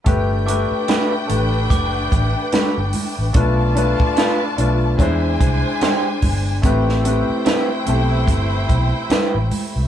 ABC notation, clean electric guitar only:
X:1
M:4/4
L:1/16
Q:"Swing 16ths" 1/4=73
K:G
V:1 name="Clean electric guitar"
z4 [A,DFB] z6 z [A,DFB] z3 | z4 [A,D=FB] z6 z [^G,D=G^B] z3 | z4 [G,CEB] z6 z [G,CEB] z3 |]